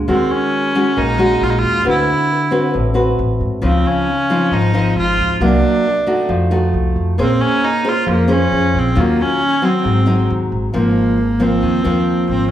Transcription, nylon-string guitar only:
0.08 D#3 G#3 C#4 F#4
0.75 G#3 C#4 F#4
0.97 A#2
1.18 G#3 C#4 F#4
1.84 D3 C4 F#4 B4
2.51 C4 F#4 B4
2.74 A2
2.94 C4 F#4 B4
3.62 C#3 F3 C4 D#4
4.30 F3 C4 D#4
4.52 G#2
4.74 F3 C4 D#4
5.41 C3 F#3 A#3
6.06 A3 D#4 F#4
6.29 F3
6.51 A3 D#4 F#4
7.18 A#3 C#4 G#4 C5
7.84 C#4 G#4 C5
8.06 F3
8.28 C#4 G#4 C5
8.95 D#3 F#3 C#4 F4
9.62 F#3 C4 D#4
9.84 G#2
10.06 F#3 C4 D#4
10.73 G#2 F3 A#3 C4
11.40 F3 A#3 C4
11.62 D#3
11.84 F3 A#3 C4

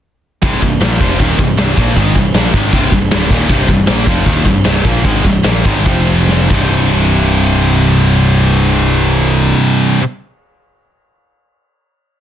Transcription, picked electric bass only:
0.43 C1
0.62 C1
0.81 A#1
1.01 F1
1.20 D#1
1.39 C1
1.58 C1
1.77 A#1
1.97 G#1
2.15 C1
2.34 A#1
2.54 G#1
2.73 C1
2.92 C1
3.12 D1
3.31 D#1
3.50 C1
3.69 C1
3.89 A#1
4.07 F1
4.26 D#1
4.46 C1
4.65 C1
4.85 A#1
5.05 G#1
5.25 C1
5.44 A#1
5.65 G#1
5.86 F1
6.51 C1

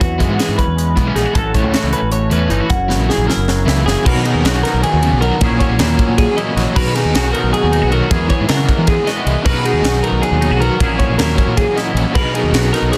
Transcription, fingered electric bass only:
0.01 E2
0.29 G#2
0.48 G#2
0.67 E2
0.97 B1
1.15 A#1
1.35 A1
1.64 C#2
1.83 C#2
2.02 A1
2.31 E2
2.50 G1
2.70 F#1
2.99 A#1
3.18 A#1
3.37 F#1
3.66 C#2
3.85 F#1
4.06 B1
4.15 B2
4.34 D#2
4.45 B1
4.74 B1
4.93 D#2
5.12 B1
5.41 A#1
5.51 A#1
5.70 A#1
5.79 D#2
6.08 A#2
6.56 A#1
6.76 B1
6.85 B2
7.05 D#2
7.14 B1
7.43 B1
7.63 D#2
7.83 B1
8.11 E2
8.20 E2
8.40 G#2
8.49 C#3
8.78 E3
9.26 C2
9.45 B1
9.54 B2
9.73 D#2
9.83 B1
10.12 B1
10.31 D#2
10.51 B1
10.80 A#1
10.88 A#1
11.09 A#1
11.18 D#2
11.47 A#2
11.95 A#1
12.15 B1
12.23 B2
12.43 D#2
12.52 B1
12.82 B1

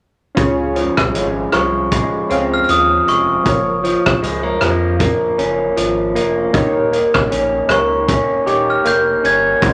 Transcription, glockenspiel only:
1.54 C#6
2.54 F6
2.64 F6
2.70 D#6
3.09 C#6
7.72 C#6
8.70 F6
8.87 G6
9.26 G#6

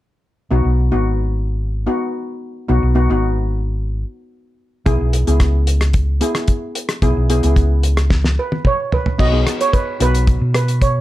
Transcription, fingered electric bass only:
0.51 B1
0.65 B1
0.93 G#1
2.69 B1
2.82 B1
3.09 G#1
4.86 B1
5.01 B1
5.28 C#2
7.02 B1
7.17 B1
7.44 C#2
9.19 B1
10.00 B1
10.41 B2

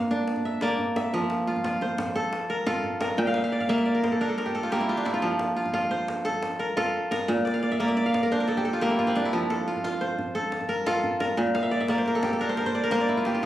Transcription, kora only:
Already playing: A#2 A#3 A#4 F5
0.11 D4
0.45 E5
0.62 A#3 D5
0.96 E5
1.14 F3
1.47 F4
1.64 F4
1.82 C5
2.15 A4
2.50 A#4
2.67 F4 A4
3.01 A#4
3.18 A#2 G5
3.27 F5
3.36 E5
3.44 F5
3.52 D5
3.60 F5
3.69 A#3 E5
3.78 F5
3.86 D5
3.95 A#4
4.04 C5
4.12 A4
4.21 D4 A#4
4.29 A4
4.38 A#4
4.46 G4
4.55 A4
4.63 F4
4.72 A#3 G4
4.81 E4
4.89 F4
4.97 D4
5.05 E4
5.14 F4
5.22 F3
5.56 F4
5.74 F4
5.91 C5
6.25 A4
6.59 A#4
6.77 F4 A4
7.11 A#4
7.28 A#2
7.45 D5
7.54 F5
7.63 D5
7.71 E5
7.80 A#3 D5
7.88 E5
7.97 D5
8.06 F5
8.14 D5
8.23 A#4
8.32 D4 C5
8.40 A#4
8.48 A4
8.57 G4
8.65 A4
8.73 F4
8.82 A#3 G4
8.90 E4
8.99 F4
9.07 C4
9.16 D4
9.25 E4
9.33 F3
9.50 A4
9.68 F4
9.84 F4
10.01 C5
10.35 A4
10.69 A#4
10.87 F4 A4
11.20 A#4
11.37 A#2
11.55 F5
11.63 E5
11.71 D5
11.80 E5
11.89 A#3 D5
11.98 C5
12.07 A#4
12.15 A4
12.24 G4
12.33 A4
12.41 D4 A#4
12.49 C5
12.57 A#4
12.66 C5
12.75 D5
12.84 A#4
12.92 A#3 C5
13.00 D5
13.09 E4
13.17 F4
13.26 G4
13.34 F4

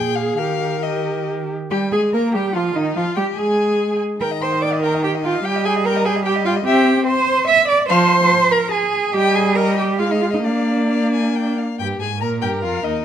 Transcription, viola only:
Already playing: G#4
0.39 G4
0.83 G4
1.71 G3
1.92 G#3
2.13 A#3
2.35 G3
2.55 F3
2.75 D#3
2.96 F3
3.17 G3
3.38 G#3
4.21 D#3
5.45 G3
6.66 C4
7.89 F3
9.14 G3
9.99 G#3
10.44 A#3
12.22 A#4

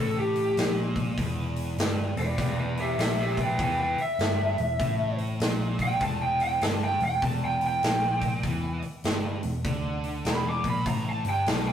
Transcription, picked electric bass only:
Already playing: A1
0.57 A#1
1.17 E1
1.78 G1
2.17 E1
2.38 E1
2.98 A#1
3.59 E2
3.97 muted picked electric bass stroke
4.19 G1
4.58 E1
4.80 A1
5.40 A#1
6.01 E1
6.62 G1
7.00 E1
7.23 E1
7.83 A#1
8.44 E2
8.83 muted picked electric bass stroke
9.04 G1
9.43 E1
9.65 D2
10.25 E1
10.64 A#1
10.86 A1
11.25 G1
11.47 B1

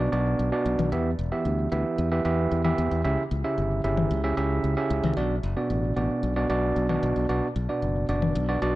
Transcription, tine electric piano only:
0.12 B2 B3 D4 F#4 D5
0.52 B2 B3 D4 F#4 D5
0.92 E3 B3 E4 G4 E5
1.32 E3 B3 E4 G4 E5
1.72 E3 B3 E4 G4 E5
2.12 E3 B3 E4 G4 E5
2.25 E3 B3 E4 G4 E5
2.64 E3 B3 E4 G4 E5
3.04 C#3 C#4 E4 G4 E5
3.44 C#3 C#4 E4 G4 E5
3.84 C#3 C#4 E4 G4 E5
4.24 C#3 C#4 E4 G4 E5
4.37 C#3 C#4 E4 G4 E5
4.77 C#3 C#4 E4 G4 E5
5.17 B2 B3 D4 F#4 D5
5.57 B2 B3 D4 F#4 D5
5.96 B2 B3 D4 F#4 D5
6.36 B2 B3 D4 F#4 D5
6.50 B2 B3 D4 F#4 D5
6.89 B2 B3 D4 F#4 D5
7.29 B2 B3 D4 F#4 D5
7.69 B2 B3 D4 F#4 D5
8.09 B2 B3 D4 F#4 D5
8.49 B2 B3 D4 F#4 D5
8.62 B2 B3 D4 F#4 D5

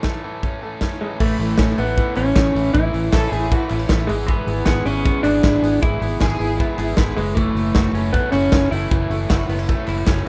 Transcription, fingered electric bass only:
1.20 A1
1.39 A1
1.59 A1
1.78 A1
2.17 A1
2.36 A1
2.55 A1
2.74 A1
2.94 A1
3.13 A1
3.32 A1
3.71 A1
3.90 A1
4.09 G#1
4.47 G#1
4.67 G#1
4.86 G#1
5.24 G#1
5.44 G#1
5.62 G#1
5.82 G#1
6.01 G#1
6.21 G#1
6.40 G#1
6.78 G#1
6.98 G#1
7.17 F#1
7.55 F#1
7.76 F#1
7.93 F#1
8.32 F#1
8.53 F#1
8.72 F#1
8.91 F#1
9.10 F#1
9.30 F#1
9.49 F#1
9.88 F#1
10.07 F#1

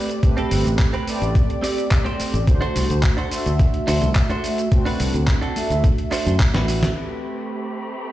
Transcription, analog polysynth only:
Already playing: A3 C4 G4 D5
0.22 A3 C4 G4 B4
1.07 A3 C4 G4 D5
2.47 A3 D4 F#4 C5
3.30 A3 D4 F#4 E5
4.71 A3 C4 D4 F#4
5.55 A3 D4 F#4 E5
6.95 A3 C4 B4

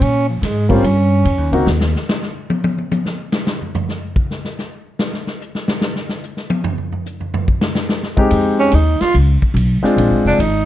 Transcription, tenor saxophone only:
0.03 C#4
0.29 F3
0.44 G#3
0.70 C4
0.85 C#4
8.60 C#4
8.75 D#4
9.01 F4
10.27 D4
10.41 D#4

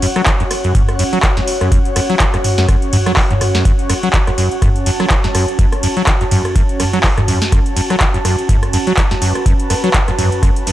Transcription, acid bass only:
0.02 F#2
0.16 F#3
0.27 E3
0.40 F#2
0.64 F#2
0.75 F#2
0.99 F#2
1.13 F#3
1.23 E3
1.37 F#2
1.61 F#2
1.96 F#2
2.10 F#3
2.20 E3
2.34 F#2
2.58 F#2
2.93 F#2
3.06 F#3
3.17 E3
3.31 F#2
3.55 F#2
3.89 F#2
4.03 F#3
4.14 E3
4.27 F#2
4.38 F#2
4.62 F#2
4.86 F#2
5.00 F#3
5.10 E3
5.24 F#2
5.35 F#2
5.59 F#2
5.83 F#2
5.97 F#3
6.07 E3
6.21 F#2
6.31 F#2
6.56 F#2
6.80 F#2
6.93 F#3
7.04 E3
7.18 F#2
7.28 F#2
7.52 F#2
7.77 F#2
7.90 F#3
8.01 E3
8.14 F#2
8.25 F#2
8.49 F#2
8.73 F#2
8.87 F#3
8.97 E3
9.11 F#2
9.22 F#2
9.46 F#2
9.70 F#2
9.84 F#3
9.94 E3
10.08 F#2
10.18 F#2
10.43 F#2
10.67 F#2

